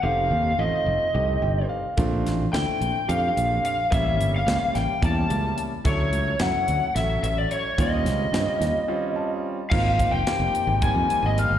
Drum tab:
CC |-------|-------|-------|-------|
HH |-------|xxxxxxx|xxxxxxx|xxxxxxx|
SD |-------|-oo----|--oo---|--o-o--|
BD |-------|o------|o---o--|o------|

CC |-------|x------|
HH |xxxx---|-xxxxxx|
SD |-ooo---|--o----|
BD |o------|oo--o--|